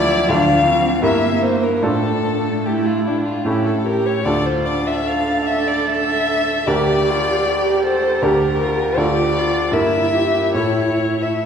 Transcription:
Already playing: grand piano D2 A3 F4 D5, viola F3, cello E4, violin D5
0.29 grand piano D2 A3 F4 D5, cello D4, violin F5
0.66 cello C4
1.02 grand piano G2 A#3 E4 A#4, cello A#3, viola A#3, violin E5
1.42 violin C5
1.63 violin A#4
1.76 violin A#4
1.82 grand piano A2 D4 F4 A4, cello A3, viola D4, violin A4
2.66 viola E4, violin G4
2.86 violin F4
3.05 viola D4, violin E4
3.26 violin F4
3.45 grand piano A2 C#4 E4 A4, viola E4, violin G4
3.66 violin A4
3.86 viola G4, violin A#4
4.06 violin C#5
4.25 grand piano D2 D4 F4 A4, viola D4, cello F4, violin D5
4.46 violin C5
4.65 violin D5
4.87 violin E5
5.07 cello A4, violin F5
5.47 violin E5
5.67 violin D5
5.87 violin E5
6.67 grand piano D2 D4 G4 A#4, viola G4, cello G4, violin D5
7.09 cello F4
7.46 cello G4
7.84 cello A4, violin C5
8.22 grand piano D2 D4 G4 A#4, cello G4, violin A#4
8.63 cello F4
8.97 grand piano D2 D4 F4 A4, viola F4, violin D5
9.02 cello G4
9.38 cello F4
9.72 grand piano G2 A#3 E4 A#4, viola E4, cello E4, violin E5
10.15 cello G4
10.55 grand piano A2 A3 E4 A4, cello E4, violin C#5
11.22 violin E5

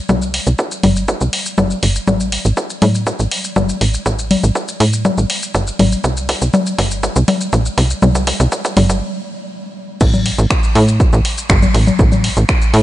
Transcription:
0.09 analog synth bass C2, kick, low conga, shaker
0.22 shaker
0.34 open hi-hat
0.47 analog synth bass C2, shaker
0.59 kick, shaker
0.71 shaker
0.83 analog synth bass G1, open hi-hat, low conga
0.96 shaker
1.08 kick, shaker
1.21 analog synth bass C2, shaker
1.33 open hi-hat
1.46 shaker
1.58 analog synth bass G1, kick, low conga, shaker
1.71 shaker
1.83 analog synth bass G1, open hi-hat
1.96 shaker
2.08 analog synth bass A1, kick, low conga, shaker
2.20 shaker
2.32 open hi-hat
2.45 analog synth bass A1, shaker
2.57 kick, shaker
2.70 shaker
2.82 analog synth bass A2, open hi-hat, low conga
2.95 shaker
3.07 kick, shaker
3.19 analog synth bass A1, shaker
3.31 open hi-hat
3.44 shaker
3.56 analog synth bass G1, kick, low conga, shaker
3.69 shaker
3.81 analog synth bass A1, open hi-hat
3.94 shaker
4.06 analog synth bass A1, kick, shaker
4.19 shaker
4.31 open hi-hat, low conga
4.44 analog synth bass A1, shaker
4.55 kick, shaker
4.68 shaker
4.80 analog synth bass A2, open hi-hat
4.93 shaker
5.05 kick, low conga, shaker
5.18 analog synth bass A1, shaker
5.30 open hi-hat
5.43 shaker
5.55 analog synth bass G1, kick, shaker
5.67 shaker
5.79 analog synth bass A1, open hi-hat, low conga
5.92 shaker
6.04 analog synth bass C2, kick, shaker
6.17 shaker
6.29 kick, open hi-hat
6.42 analog synth bass C2, shaker
6.54 kick, low conga, shaker
6.66 shaker
6.78 analog synth bass G1, kick, open hi-hat
6.91 shaker
7.03 kick, shaker
7.16 analog synth bass C2, shaker
7.28 kick, open hi-hat, low conga
7.41 shaker
7.53 analog synth bass A#1, kick, shaker
7.66 shaker
7.78 analog synth bass C2, kick, open hi-hat
7.90 shaker
8.02 analog synth bass C2, kick, low conga, shaker
8.15 kick, shaker
8.27 kick, open hi-hat
8.40 analog synth bass C2, kick, shaker
8.52 kick, shaker
8.65 kick, shaker
8.77 analog synth bass G1, kick, open hi-hat, low conga
8.90 kick, shaker
10.01 analog synth bass A1, kick, crash, shaker
10.14 low conga, shaker
10.26 open hi-hat
10.39 analog synth bass A1, shaker
10.50 finger snap, kick, shaker
10.63 shaker
10.75 analog synth bass A2, open hi-hat
10.88 shaker
11.00 kick, shaker
11.13 analog synth bass A1, shaker
11.25 open hi-hat
11.38 shaker
11.50 analog synth bass G1, finger snap, kick, shaker
11.63 low conga, shaker
11.74 analog synth bass A1, open hi-hat
11.87 low conga, shaker
11.99 analog synth bass A1, kick, shaker
12.12 low conga, shaker
12.24 open hi-hat
12.37 analog synth bass A1, shaker
12.49 finger snap, kick, shaker
12.62 shaker
12.74 analog synth bass A2, open hi-hat

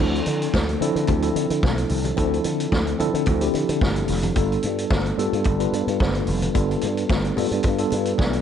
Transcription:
Already playing: tine electric piano F3
0.00 slap bass D2, tine electric piano C4 D4 E4 A4, crash, muted conga
0.15 closed hi-hat
0.26 slap bass D3, closed hi-hat, muted conga
0.42 closed hi-hat
0.54 slap bass D2, kick, snare, high conga
0.69 closed hi-hat
0.80 slap bass D3, tine electric piano F3 C4 D4 E4 A4, closed hi-hat
0.95 slap bass D3, closed hi-hat
1.07 slap bass D2, kick, closed hi-hat, muted conga
1.22 tine electric piano F3 C4 D4 E4 A4, closed hi-hat
1.36 slap bass D3, closed hi-hat
1.50 slap bass D3, closed hi-hat
1.63 slap bass B1, kick, snare, high conga
1.78 closed hi-hat
1.89 slap bass C2, open hi-hat, high conga
2.04 closed hi-hat, high conga
2.16 slap bass D2, tine electric piano F3 C4 D4 E4 A4, kick, closed hi-hat, muted conga
2.34 closed hi-hat
2.44 slap bass D3, closed hi-hat, muted conga
2.60 closed hi-hat
2.72 slap bass D2, kick, snare, high conga
2.87 closed hi-hat
2.99 slap bass D3, tine electric piano F3 C4 D4 E4 A4, closed hi-hat, low conga
3.14 slap bass D3, closed hi-hat
3.26 slap bass D2, kick, closed hi-hat, muted conga
3.40 tine electric piano F3 C4 D4 E4 G4, closed hi-hat
3.54 slap bass D3, closed hi-hat, muted conga
3.69 slap bass D3, closed hi-hat
3.81 slap bass G1, kick, snare, high conga
3.96 closed hi-hat
4.08 slap bass F1, snare, open hi-hat, high conga
4.23 closed hi-hat, high conga
4.35 slap bass G1, tine electric piano G3 B3 D4 F4 A4, kick, closed hi-hat, muted conga
4.52 closed hi-hat
4.63 slap bass G2, closed hi-hat, muted conga
4.78 closed hi-hat
4.90 slap bass G1, kick, snare, high conga
5.06 closed hi-hat
5.17 slap bass G2, tine electric piano G3 B3 D4 F4 A4, closed hi-hat
5.33 slap bass G2, closed hi-hat
5.44 slap bass G1, kick, closed hi-hat, muted conga
5.59 tine electric piano G3 B3 D4 F4 B4, closed hi-hat
5.72 slap bass G2, closed hi-hat
5.87 slap bass G2, closed hi-hat
6.00 slap bass G1, kick, snare, high conga
6.15 closed hi-hat
6.27 slap bass F1, open hi-hat, high conga
6.42 closed hi-hat, high conga
6.54 slap bass G1, tine electric piano G3 B3 D4 F4 A4, kick, closed hi-hat, muted conga
6.71 closed hi-hat
6.81 slap bass G2, closed hi-hat, muted conga
6.97 closed hi-hat
7.10 slap bass G1, kick, snare, high conga
7.24 closed hi-hat
7.36 slap bass G2, tine electric piano G3 B3 D4 F4 A4, open hi-hat, low conga
7.51 slap bass G2, closed hi-hat
7.63 slap bass G2, kick, closed hi-hat, muted conga
7.78 tine electric piano G3 B3 D4 F4 A4, closed hi-hat
7.91 slap bass G2, tine electric piano B4, closed hi-hat, muted conga
8.05 closed hi-hat
8.18 slap bass B1, tine electric piano D5, kick, snare, high conga
8.33 closed hi-hat

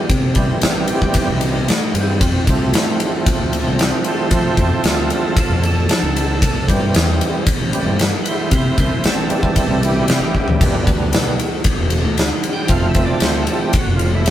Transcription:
0.09 fingered electric bass C3, kick, ride
0.35 fingered electric bass C2, tonewheel organ E3 G3 C4, kick, ride
0.62 fingered electric bass A1, snare, ride
0.88 tonewheel organ G4, ride
1.02 kick
1.14 kick, ride
1.19 tonewheel organ G4
1.29 fingered electric bass C2, tonewheel organ D#4
1.41 ride
1.45 tonewheel organ E3 G3 C4
1.68 fingered electric bass A2, snare, ride
1.94 fingered electric bass G2, ride
2.00 tonewheel organ C4
2.21 fingered electric bass F2, kick, ride
2.46 fingered electric bass C2, tonewheel organ F3 A3 C4, kick, ride
2.73 fingered electric bass A2, snare, ride
3.00 ride
3.26 kick, ride
3.39 fingered electric bass D2
3.53 ride
3.66 fingered electric bass C2
3.79 snare, ride
4.03 tonewheel organ B4 C5, ride
4.07 tonewheel organ A4
4.31 fingered electric bass F3, tonewheel organ F3 A3 C4 A4, kick, ride
4.35 tonewheel organ C5
4.57 fingered electric bass F2, tonewheel organ C5, kick, ride
4.61 tonewheel organ A4
4.84 fingered electric bass D2, tonewheel organ F4 A4, snare, ride
5.10 tonewheel organ F3 A3 C4 F4, ride
5.15 tonewheel organ A4
5.37 tonewheel organ F4 A4, kick, ride
5.50 fingered electric bass F2
5.63 tonewheel organ A4, ride
5.89 fingered electric bass F3, snare, ride
6.03 fingered electric bass C#2
6.17 ride
6.42 fingered electric bass C2, kick, ride
6.68 fingered electric bass G2, tonewheel organ E3 G3 C4, kick, ride
6.94 fingered electric bass E2, snare, ride
7.21 ride
7.47 kick, ride
7.60 fingered electric bass A1
7.73 tonewheel organ E3 G3 C4, ride
7.85 fingered electric bass G2
7.99 snare, ride
8.24 tonewheel organ B4, ride
8.28 tonewheel organ E4 C5
8.51 fingered electric bass C3, tonewheel organ E4, kick, ride
8.56 tonewheel organ C5
8.78 fingered electric bass C2, tonewheel organ E4 C5, kick, ride
9.04 fingered electric bass A1, tonewheel organ C4 A4, snare, ride
9.29 tonewheel organ E3 G3 C4 A4, ride
9.43 kick
9.56 tonewheel organ C4 A4, kick, ride
9.68 fingered electric bass C2
9.83 tonewheel organ E4 G4, ride
10.08 fingered electric bass C3, snare, ride
10.20 fingered electric bass A1
10.35 kick
10.48 floor tom
10.61 fingered electric bass G1, tonewheel organ D3 G3 B3, kick, ride, splash
10.87 fingered electric bass D2, kick, ride
11.13 fingered electric bass B1, snare, ride
11.39 ride
11.64 kick, ride
11.79 fingered electric bass E1
11.90 ride
12.04 fingered electric bass D2
12.18 snare, ride
12.43 ride
12.53 tonewheel organ G5
12.68 fingered electric bass F1, tonewheel organ F3 A3 C4 F5, kick, ride
12.89 tonewheel organ E5
12.95 fingered electric bass F1, kick, ride
13.05 tonewheel organ D5
13.20 fingered electric bass D2, tonewheel organ C5, snare, ride
13.43 tonewheel organ A4, ride
13.49 tonewheel organ F3 A3 C4
13.61 tonewheel organ G4
13.73 kick, ride
13.79 tonewheel organ F#4
13.86 fingered electric bass F1
13.96 tonewheel organ F4, ride
14.15 tonewheel organ E4
14.26 fingered electric bass F2, ride

